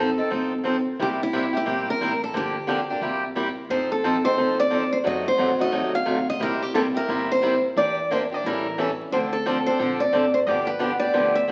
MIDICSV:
0, 0, Header, 1, 4, 480
1, 0, Start_track
1, 0, Tempo, 338600
1, 1401, Time_signature, 4, 2, 24, 8
1, 16325, End_track
2, 0, Start_track
2, 0, Title_t, "Steel-string acoustic guitar"
2, 0, Program_c, 0, 25
2, 0, Note_on_c, 0, 69, 74
2, 873, Note_off_c, 0, 69, 0
2, 1451, Note_on_c, 0, 67, 87
2, 1523, Note_off_c, 0, 67, 0
2, 1745, Note_on_c, 0, 64, 83
2, 2213, Note_off_c, 0, 64, 0
2, 2224, Note_on_c, 0, 67, 88
2, 2647, Note_off_c, 0, 67, 0
2, 2696, Note_on_c, 0, 70, 91
2, 3165, Note_off_c, 0, 70, 0
2, 3171, Note_on_c, 0, 69, 85
2, 3346, Note_off_c, 0, 69, 0
2, 3358, Note_on_c, 0, 67, 78
2, 4725, Note_off_c, 0, 67, 0
2, 5252, Note_on_c, 0, 72, 75
2, 5547, Note_off_c, 0, 72, 0
2, 5553, Note_on_c, 0, 69, 70
2, 6017, Note_off_c, 0, 69, 0
2, 6023, Note_on_c, 0, 72, 83
2, 6510, Note_off_c, 0, 72, 0
2, 6515, Note_on_c, 0, 74, 85
2, 6977, Note_off_c, 0, 74, 0
2, 6982, Note_on_c, 0, 72, 81
2, 7053, Note_off_c, 0, 72, 0
2, 7183, Note_on_c, 0, 75, 88
2, 7448, Note_off_c, 0, 75, 0
2, 7484, Note_on_c, 0, 72, 85
2, 7919, Note_off_c, 0, 72, 0
2, 7957, Note_on_c, 0, 75, 90
2, 8428, Note_off_c, 0, 75, 0
2, 8434, Note_on_c, 0, 77, 91
2, 8920, Note_off_c, 0, 77, 0
2, 8926, Note_on_c, 0, 75, 83
2, 9105, Note_off_c, 0, 75, 0
2, 9109, Note_on_c, 0, 70, 88
2, 9391, Note_off_c, 0, 70, 0
2, 9391, Note_on_c, 0, 67, 70
2, 9563, Note_off_c, 0, 67, 0
2, 9569, Note_on_c, 0, 69, 81
2, 9647, Note_off_c, 0, 69, 0
2, 9876, Note_on_c, 0, 70, 85
2, 10362, Note_off_c, 0, 70, 0
2, 10371, Note_on_c, 0, 72, 83
2, 10802, Note_off_c, 0, 72, 0
2, 11021, Note_on_c, 0, 74, 80
2, 11508, Note_off_c, 0, 74, 0
2, 11515, Note_on_c, 0, 72, 75
2, 11590, Note_off_c, 0, 72, 0
2, 11824, Note_on_c, 0, 74, 75
2, 11993, Note_off_c, 0, 74, 0
2, 11997, Note_on_c, 0, 70, 72
2, 12429, Note_off_c, 0, 70, 0
2, 12933, Note_on_c, 0, 72, 78
2, 13011, Note_off_c, 0, 72, 0
2, 13222, Note_on_c, 0, 69, 77
2, 13700, Note_on_c, 0, 72, 83
2, 13713, Note_off_c, 0, 69, 0
2, 14173, Note_off_c, 0, 72, 0
2, 14179, Note_on_c, 0, 74, 85
2, 14652, Note_off_c, 0, 74, 0
2, 14658, Note_on_c, 0, 72, 79
2, 14729, Note_off_c, 0, 72, 0
2, 14836, Note_on_c, 0, 74, 90
2, 15123, Note_on_c, 0, 71, 80
2, 15131, Note_off_c, 0, 74, 0
2, 15586, Note_on_c, 0, 74, 89
2, 15622, Note_off_c, 0, 71, 0
2, 16091, Note_off_c, 0, 74, 0
2, 16097, Note_on_c, 0, 76, 92
2, 16325, Note_off_c, 0, 76, 0
2, 16325, End_track
3, 0, Start_track
3, 0, Title_t, "Steel-string acoustic guitar"
3, 0, Program_c, 1, 25
3, 251, Note_on_c, 1, 69, 52
3, 262, Note_on_c, 1, 63, 52
3, 280, Note_on_c, 1, 60, 42
3, 415, Note_off_c, 1, 63, 0
3, 416, Note_off_c, 1, 60, 0
3, 432, Note_off_c, 1, 69, 0
3, 432, Note_on_c, 1, 63, 65
3, 433, Note_on_c, 1, 60, 59
3, 436, Note_on_c, 1, 53, 66
3, 450, Note_on_c, 1, 69, 62
3, 729, Note_off_c, 1, 63, 0
3, 730, Note_off_c, 1, 60, 0
3, 731, Note_off_c, 1, 53, 0
3, 738, Note_off_c, 1, 69, 0
3, 901, Note_on_c, 1, 53, 68
3, 919, Note_on_c, 1, 60, 76
3, 919, Note_on_c, 1, 69, 76
3, 923, Note_on_c, 1, 63, 68
3, 1066, Note_off_c, 1, 53, 0
3, 1075, Note_off_c, 1, 60, 0
3, 1075, Note_off_c, 1, 69, 0
3, 1077, Note_off_c, 1, 63, 0
3, 1410, Note_on_c, 1, 48, 61
3, 1412, Note_on_c, 1, 55, 65
3, 1413, Note_on_c, 1, 58, 72
3, 1416, Note_on_c, 1, 64, 68
3, 1418, Note_on_c, 1, 67, 75
3, 1699, Note_off_c, 1, 48, 0
3, 1700, Note_off_c, 1, 55, 0
3, 1700, Note_off_c, 1, 58, 0
3, 1702, Note_off_c, 1, 64, 0
3, 1703, Note_off_c, 1, 67, 0
3, 1887, Note_on_c, 1, 48, 89
3, 1888, Note_on_c, 1, 58, 84
3, 1890, Note_on_c, 1, 55, 83
3, 1892, Note_on_c, 1, 67, 88
3, 1895, Note_on_c, 1, 64, 88
3, 2040, Note_off_c, 1, 48, 0
3, 2040, Note_off_c, 1, 58, 0
3, 2041, Note_off_c, 1, 55, 0
3, 2042, Note_off_c, 1, 67, 0
3, 2044, Note_off_c, 1, 64, 0
3, 2167, Note_on_c, 1, 67, 54
3, 2180, Note_on_c, 1, 64, 52
3, 2193, Note_on_c, 1, 58, 43
3, 2337, Note_off_c, 1, 58, 0
3, 2338, Note_off_c, 1, 64, 0
3, 2351, Note_off_c, 1, 67, 0
3, 2351, Note_on_c, 1, 48, 62
3, 2352, Note_on_c, 1, 55, 73
3, 2354, Note_on_c, 1, 58, 65
3, 2355, Note_on_c, 1, 64, 62
3, 2366, Note_on_c, 1, 67, 69
3, 2650, Note_off_c, 1, 48, 0
3, 2650, Note_off_c, 1, 55, 0
3, 2651, Note_off_c, 1, 58, 0
3, 2652, Note_off_c, 1, 64, 0
3, 2657, Note_off_c, 1, 67, 0
3, 2850, Note_on_c, 1, 48, 65
3, 2850, Note_on_c, 1, 55, 68
3, 2857, Note_on_c, 1, 58, 74
3, 2862, Note_on_c, 1, 67, 74
3, 2863, Note_on_c, 1, 64, 80
3, 3002, Note_off_c, 1, 48, 0
3, 3002, Note_off_c, 1, 55, 0
3, 3005, Note_off_c, 1, 58, 0
3, 3008, Note_off_c, 1, 64, 0
3, 3008, Note_off_c, 1, 67, 0
3, 3309, Note_on_c, 1, 50, 63
3, 3313, Note_on_c, 1, 53, 63
3, 3314, Note_on_c, 1, 58, 64
3, 3328, Note_on_c, 1, 67, 64
3, 3329, Note_on_c, 1, 62, 62
3, 3609, Note_off_c, 1, 50, 0
3, 3611, Note_off_c, 1, 53, 0
3, 3612, Note_off_c, 1, 58, 0
3, 3619, Note_off_c, 1, 62, 0
3, 3619, Note_off_c, 1, 67, 0
3, 3787, Note_on_c, 1, 50, 74
3, 3794, Note_on_c, 1, 53, 74
3, 3804, Note_on_c, 1, 58, 79
3, 3804, Note_on_c, 1, 67, 89
3, 3809, Note_on_c, 1, 62, 91
3, 3951, Note_off_c, 1, 50, 0
3, 3954, Note_off_c, 1, 53, 0
3, 3959, Note_off_c, 1, 58, 0
3, 3959, Note_off_c, 1, 67, 0
3, 3961, Note_off_c, 1, 62, 0
3, 4111, Note_on_c, 1, 62, 48
3, 4111, Note_on_c, 1, 67, 50
3, 4133, Note_on_c, 1, 58, 40
3, 4267, Note_off_c, 1, 67, 0
3, 4271, Note_off_c, 1, 58, 0
3, 4275, Note_on_c, 1, 55, 61
3, 4282, Note_on_c, 1, 48, 63
3, 4284, Note_off_c, 1, 62, 0
3, 4284, Note_on_c, 1, 67, 67
3, 4288, Note_on_c, 1, 58, 66
3, 4292, Note_on_c, 1, 64, 69
3, 4573, Note_off_c, 1, 55, 0
3, 4576, Note_off_c, 1, 48, 0
3, 4577, Note_off_c, 1, 67, 0
3, 4579, Note_off_c, 1, 58, 0
3, 4581, Note_off_c, 1, 64, 0
3, 4754, Note_on_c, 1, 48, 63
3, 4762, Note_on_c, 1, 55, 75
3, 4764, Note_on_c, 1, 58, 68
3, 4765, Note_on_c, 1, 64, 71
3, 4772, Note_on_c, 1, 67, 82
3, 4915, Note_off_c, 1, 48, 0
3, 4918, Note_off_c, 1, 55, 0
3, 4920, Note_off_c, 1, 58, 0
3, 4920, Note_off_c, 1, 64, 0
3, 4923, Note_off_c, 1, 67, 0
3, 5246, Note_on_c, 1, 53, 58
3, 5247, Note_on_c, 1, 60, 65
3, 5260, Note_on_c, 1, 63, 67
3, 5267, Note_on_c, 1, 69, 65
3, 5539, Note_off_c, 1, 53, 0
3, 5539, Note_off_c, 1, 60, 0
3, 5546, Note_off_c, 1, 63, 0
3, 5549, Note_off_c, 1, 69, 0
3, 5728, Note_on_c, 1, 60, 81
3, 5730, Note_on_c, 1, 53, 83
3, 5738, Note_on_c, 1, 63, 88
3, 5743, Note_on_c, 1, 69, 82
3, 5882, Note_off_c, 1, 60, 0
3, 5883, Note_off_c, 1, 53, 0
3, 5887, Note_off_c, 1, 63, 0
3, 5890, Note_off_c, 1, 69, 0
3, 6015, Note_on_c, 1, 69, 51
3, 6033, Note_on_c, 1, 63, 46
3, 6043, Note_on_c, 1, 60, 47
3, 6186, Note_off_c, 1, 60, 0
3, 6188, Note_off_c, 1, 69, 0
3, 6192, Note_off_c, 1, 63, 0
3, 6203, Note_on_c, 1, 60, 65
3, 6205, Note_on_c, 1, 69, 67
3, 6206, Note_on_c, 1, 53, 62
3, 6209, Note_on_c, 1, 63, 68
3, 6497, Note_off_c, 1, 60, 0
3, 6499, Note_off_c, 1, 53, 0
3, 6499, Note_off_c, 1, 69, 0
3, 6501, Note_off_c, 1, 63, 0
3, 6664, Note_on_c, 1, 53, 73
3, 6675, Note_on_c, 1, 63, 82
3, 6680, Note_on_c, 1, 60, 72
3, 6687, Note_on_c, 1, 69, 82
3, 6831, Note_off_c, 1, 53, 0
3, 6836, Note_off_c, 1, 63, 0
3, 6839, Note_off_c, 1, 60, 0
3, 6842, Note_off_c, 1, 69, 0
3, 7141, Note_on_c, 1, 54, 68
3, 7145, Note_on_c, 1, 48, 60
3, 7149, Note_on_c, 1, 57, 61
3, 7154, Note_on_c, 1, 63, 69
3, 7164, Note_on_c, 1, 66, 60
3, 7447, Note_off_c, 1, 54, 0
3, 7449, Note_off_c, 1, 48, 0
3, 7451, Note_off_c, 1, 57, 0
3, 7453, Note_off_c, 1, 63, 0
3, 7458, Note_off_c, 1, 66, 0
3, 7626, Note_on_c, 1, 48, 78
3, 7633, Note_on_c, 1, 54, 82
3, 7635, Note_on_c, 1, 57, 82
3, 7637, Note_on_c, 1, 63, 83
3, 7642, Note_on_c, 1, 66, 87
3, 7792, Note_off_c, 1, 48, 0
3, 7795, Note_off_c, 1, 54, 0
3, 7796, Note_off_c, 1, 57, 0
3, 7797, Note_off_c, 1, 63, 0
3, 7800, Note_off_c, 1, 66, 0
3, 7922, Note_on_c, 1, 66, 54
3, 7937, Note_on_c, 1, 63, 47
3, 7946, Note_on_c, 1, 57, 42
3, 8096, Note_off_c, 1, 57, 0
3, 8097, Note_off_c, 1, 63, 0
3, 8099, Note_off_c, 1, 66, 0
3, 8108, Note_on_c, 1, 48, 61
3, 8110, Note_on_c, 1, 54, 67
3, 8113, Note_on_c, 1, 57, 66
3, 8114, Note_on_c, 1, 63, 62
3, 8116, Note_on_c, 1, 66, 73
3, 8410, Note_off_c, 1, 48, 0
3, 8412, Note_off_c, 1, 54, 0
3, 8413, Note_off_c, 1, 57, 0
3, 8413, Note_off_c, 1, 63, 0
3, 8415, Note_off_c, 1, 66, 0
3, 8583, Note_on_c, 1, 63, 75
3, 8585, Note_on_c, 1, 57, 78
3, 8587, Note_on_c, 1, 48, 69
3, 8590, Note_on_c, 1, 66, 80
3, 8591, Note_on_c, 1, 54, 74
3, 8750, Note_off_c, 1, 63, 0
3, 8751, Note_off_c, 1, 57, 0
3, 8753, Note_off_c, 1, 48, 0
3, 8754, Note_off_c, 1, 54, 0
3, 8754, Note_off_c, 1, 66, 0
3, 9071, Note_on_c, 1, 48, 64
3, 9071, Note_on_c, 1, 58, 63
3, 9075, Note_on_c, 1, 55, 66
3, 9085, Note_on_c, 1, 64, 67
3, 9085, Note_on_c, 1, 67, 65
3, 9372, Note_off_c, 1, 48, 0
3, 9372, Note_off_c, 1, 58, 0
3, 9374, Note_off_c, 1, 55, 0
3, 9379, Note_off_c, 1, 64, 0
3, 9379, Note_off_c, 1, 67, 0
3, 9556, Note_on_c, 1, 48, 75
3, 9562, Note_on_c, 1, 55, 84
3, 9566, Note_on_c, 1, 58, 79
3, 9574, Note_on_c, 1, 64, 84
3, 9577, Note_on_c, 1, 67, 85
3, 9717, Note_off_c, 1, 48, 0
3, 9720, Note_off_c, 1, 55, 0
3, 9722, Note_off_c, 1, 58, 0
3, 9726, Note_off_c, 1, 64, 0
3, 9727, Note_off_c, 1, 67, 0
3, 9838, Note_on_c, 1, 67, 53
3, 9859, Note_on_c, 1, 64, 45
3, 9861, Note_on_c, 1, 58, 44
3, 10029, Note_off_c, 1, 58, 0
3, 10029, Note_off_c, 1, 67, 0
3, 10030, Note_off_c, 1, 64, 0
3, 10042, Note_on_c, 1, 48, 65
3, 10046, Note_on_c, 1, 58, 63
3, 10047, Note_on_c, 1, 64, 68
3, 10048, Note_on_c, 1, 55, 62
3, 10062, Note_on_c, 1, 67, 73
3, 10338, Note_off_c, 1, 48, 0
3, 10340, Note_off_c, 1, 55, 0
3, 10340, Note_off_c, 1, 58, 0
3, 10340, Note_off_c, 1, 64, 0
3, 10348, Note_off_c, 1, 67, 0
3, 10516, Note_on_c, 1, 48, 72
3, 10531, Note_on_c, 1, 67, 79
3, 10533, Note_on_c, 1, 55, 77
3, 10533, Note_on_c, 1, 58, 76
3, 10538, Note_on_c, 1, 64, 76
3, 10677, Note_off_c, 1, 48, 0
3, 10684, Note_off_c, 1, 67, 0
3, 10685, Note_off_c, 1, 58, 0
3, 10686, Note_off_c, 1, 55, 0
3, 10688, Note_off_c, 1, 64, 0
3, 11007, Note_on_c, 1, 58, 64
3, 11011, Note_on_c, 1, 52, 58
3, 11020, Note_on_c, 1, 62, 62
3, 11022, Note_on_c, 1, 67, 67
3, 11300, Note_off_c, 1, 58, 0
3, 11302, Note_off_c, 1, 52, 0
3, 11306, Note_off_c, 1, 62, 0
3, 11307, Note_off_c, 1, 67, 0
3, 11490, Note_on_c, 1, 52, 76
3, 11499, Note_on_c, 1, 58, 88
3, 11504, Note_on_c, 1, 62, 83
3, 11505, Note_on_c, 1, 67, 91
3, 11643, Note_off_c, 1, 52, 0
3, 11648, Note_off_c, 1, 58, 0
3, 11650, Note_off_c, 1, 62, 0
3, 11651, Note_off_c, 1, 67, 0
3, 11787, Note_on_c, 1, 67, 48
3, 11798, Note_on_c, 1, 62, 46
3, 11823, Note_on_c, 1, 58, 41
3, 11963, Note_off_c, 1, 67, 0
3, 11968, Note_off_c, 1, 62, 0
3, 11981, Note_off_c, 1, 58, 0
3, 11989, Note_on_c, 1, 52, 66
3, 11994, Note_on_c, 1, 55, 59
3, 11998, Note_on_c, 1, 64, 71
3, 11999, Note_on_c, 1, 61, 65
3, 12006, Note_on_c, 1, 69, 67
3, 12270, Note_off_c, 1, 52, 0
3, 12273, Note_off_c, 1, 55, 0
3, 12275, Note_off_c, 1, 61, 0
3, 12275, Note_off_c, 1, 64, 0
3, 12279, Note_off_c, 1, 69, 0
3, 12446, Note_on_c, 1, 55, 69
3, 12450, Note_on_c, 1, 52, 75
3, 12452, Note_on_c, 1, 64, 75
3, 12456, Note_on_c, 1, 61, 81
3, 12469, Note_on_c, 1, 69, 79
3, 12601, Note_off_c, 1, 55, 0
3, 12603, Note_off_c, 1, 52, 0
3, 12604, Note_off_c, 1, 64, 0
3, 12606, Note_off_c, 1, 61, 0
3, 12612, Note_off_c, 1, 69, 0
3, 12938, Note_on_c, 1, 50, 62
3, 12943, Note_on_c, 1, 60, 64
3, 12945, Note_on_c, 1, 53, 62
3, 12945, Note_on_c, 1, 69, 71
3, 12950, Note_on_c, 1, 62, 63
3, 13224, Note_off_c, 1, 50, 0
3, 13227, Note_off_c, 1, 60, 0
3, 13228, Note_off_c, 1, 53, 0
3, 13228, Note_off_c, 1, 69, 0
3, 13230, Note_off_c, 1, 62, 0
3, 13407, Note_on_c, 1, 53, 78
3, 13408, Note_on_c, 1, 50, 82
3, 13414, Note_on_c, 1, 62, 90
3, 13415, Note_on_c, 1, 60, 88
3, 13424, Note_on_c, 1, 69, 88
3, 13561, Note_off_c, 1, 50, 0
3, 13561, Note_off_c, 1, 53, 0
3, 13565, Note_off_c, 1, 60, 0
3, 13565, Note_off_c, 1, 62, 0
3, 13569, Note_off_c, 1, 69, 0
3, 13709, Note_on_c, 1, 69, 50
3, 13718, Note_on_c, 1, 62, 50
3, 13732, Note_on_c, 1, 60, 41
3, 13870, Note_off_c, 1, 62, 0
3, 13873, Note_off_c, 1, 69, 0
3, 13874, Note_off_c, 1, 60, 0
3, 13877, Note_on_c, 1, 53, 60
3, 13878, Note_on_c, 1, 50, 66
3, 13887, Note_on_c, 1, 62, 65
3, 13890, Note_on_c, 1, 69, 70
3, 13891, Note_on_c, 1, 60, 67
3, 14173, Note_off_c, 1, 53, 0
3, 14174, Note_off_c, 1, 50, 0
3, 14178, Note_off_c, 1, 62, 0
3, 14179, Note_off_c, 1, 69, 0
3, 14180, Note_off_c, 1, 60, 0
3, 14354, Note_on_c, 1, 50, 69
3, 14356, Note_on_c, 1, 53, 78
3, 14359, Note_on_c, 1, 60, 73
3, 14369, Note_on_c, 1, 62, 79
3, 14370, Note_on_c, 1, 69, 70
3, 14514, Note_off_c, 1, 50, 0
3, 14515, Note_off_c, 1, 53, 0
3, 14516, Note_off_c, 1, 60, 0
3, 14521, Note_off_c, 1, 62, 0
3, 14522, Note_off_c, 1, 69, 0
3, 14845, Note_on_c, 1, 50, 61
3, 14846, Note_on_c, 1, 53, 61
3, 14858, Note_on_c, 1, 59, 61
3, 14862, Note_on_c, 1, 62, 65
3, 14863, Note_on_c, 1, 67, 69
3, 15136, Note_off_c, 1, 50, 0
3, 15137, Note_off_c, 1, 53, 0
3, 15143, Note_off_c, 1, 59, 0
3, 15145, Note_off_c, 1, 62, 0
3, 15145, Note_off_c, 1, 67, 0
3, 15295, Note_on_c, 1, 53, 81
3, 15300, Note_on_c, 1, 50, 85
3, 15310, Note_on_c, 1, 62, 86
3, 15311, Note_on_c, 1, 59, 89
3, 15315, Note_on_c, 1, 67, 87
3, 15463, Note_off_c, 1, 53, 0
3, 15466, Note_off_c, 1, 50, 0
3, 15471, Note_off_c, 1, 59, 0
3, 15471, Note_off_c, 1, 62, 0
3, 15473, Note_off_c, 1, 67, 0
3, 15608, Note_on_c, 1, 67, 51
3, 15610, Note_on_c, 1, 62, 51
3, 15623, Note_on_c, 1, 59, 43
3, 15771, Note_off_c, 1, 67, 0
3, 15772, Note_off_c, 1, 59, 0
3, 15784, Note_off_c, 1, 62, 0
3, 15786, Note_on_c, 1, 50, 65
3, 15788, Note_on_c, 1, 67, 65
3, 15789, Note_on_c, 1, 59, 67
3, 15793, Note_on_c, 1, 53, 65
3, 15801, Note_on_c, 1, 62, 64
3, 16086, Note_off_c, 1, 50, 0
3, 16087, Note_off_c, 1, 59, 0
3, 16087, Note_off_c, 1, 67, 0
3, 16089, Note_off_c, 1, 53, 0
3, 16093, Note_off_c, 1, 62, 0
3, 16270, Note_on_c, 1, 50, 74
3, 16278, Note_on_c, 1, 53, 67
3, 16325, Note_off_c, 1, 50, 0
3, 16325, Note_off_c, 1, 53, 0
3, 16325, End_track
4, 0, Start_track
4, 0, Title_t, "Upright bass"
4, 0, Program_c, 2, 32
4, 0, Note_on_c, 2, 41, 83
4, 248, Note_off_c, 2, 41, 0
4, 445, Note_on_c, 2, 36, 70
4, 1212, Note_off_c, 2, 36, 0
4, 1408, Note_on_c, 2, 36, 88
4, 2174, Note_off_c, 2, 36, 0
4, 2365, Note_on_c, 2, 34, 70
4, 2772, Note_off_c, 2, 34, 0
4, 2842, Note_on_c, 2, 33, 67
4, 3251, Note_off_c, 2, 33, 0
4, 3316, Note_on_c, 2, 31, 80
4, 4087, Note_off_c, 2, 31, 0
4, 4274, Note_on_c, 2, 36, 75
4, 5046, Note_off_c, 2, 36, 0
4, 5232, Note_on_c, 2, 41, 78
4, 6006, Note_off_c, 2, 41, 0
4, 6195, Note_on_c, 2, 36, 66
4, 6968, Note_off_c, 2, 36, 0
4, 7161, Note_on_c, 2, 42, 78
4, 7548, Note_off_c, 2, 42, 0
4, 7642, Note_on_c, 2, 41, 80
4, 8052, Note_off_c, 2, 41, 0
4, 8119, Note_on_c, 2, 39, 67
4, 8530, Note_off_c, 2, 39, 0
4, 8606, Note_on_c, 2, 38, 68
4, 9014, Note_off_c, 2, 38, 0
4, 9079, Note_on_c, 2, 36, 82
4, 9850, Note_off_c, 2, 36, 0
4, 10038, Note_on_c, 2, 31, 71
4, 10809, Note_off_c, 2, 31, 0
4, 11004, Note_on_c, 2, 40, 83
4, 11772, Note_off_c, 2, 40, 0
4, 11960, Note_on_c, 2, 33, 78
4, 12729, Note_off_c, 2, 33, 0
4, 12917, Note_on_c, 2, 38, 78
4, 13687, Note_off_c, 2, 38, 0
4, 13881, Note_on_c, 2, 34, 73
4, 14290, Note_off_c, 2, 34, 0
4, 14353, Note_on_c, 2, 33, 72
4, 14764, Note_off_c, 2, 33, 0
4, 14841, Note_on_c, 2, 31, 80
4, 15608, Note_off_c, 2, 31, 0
4, 15806, Note_on_c, 2, 38, 68
4, 16325, Note_off_c, 2, 38, 0
4, 16325, End_track
0, 0, End_of_file